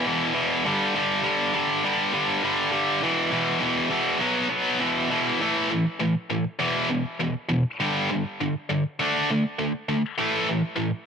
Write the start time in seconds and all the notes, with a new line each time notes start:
0.05 E2 B2 E3
0.34 E2 B2 E3
0.65 G2 D3 G3
0.95 G2 D3 G3
1.24 G2 D3 G3
1.54 G2 D3 G3
1.84 G2 D3 G3
2.13 G2 D3 G3
2.43 G2 D3 G3
2.72 G2 D3 G3
3.03 E2 B2 E3
3.32 E2 B2 E3
3.60 E2 B2 E3
3.90 E2 B2 E3
4.19 B2 F#3 B3
4.50 B2 F#3 B3
4.80 E2 B2 E3
5.10 E2 B2 E3
5.40 A2 E3 A3
5.70 A2 E3
6.00 A2 E3
6.30 A2 E3
6.59 E2 B2 E3
6.90 E2 B2
7.20 E2 B2
7.49 E2 B2
7.80 G2 D3 G3
8.10 G2 D3
8.41 G2 D3
8.70 G2 D3
8.99 D3 A3 D4
9.30 D3 A3
9.59 D3 A3
9.89 D3 A3
10.18 A2 E3 A3
10.48 A2 E3
10.76 A2 E3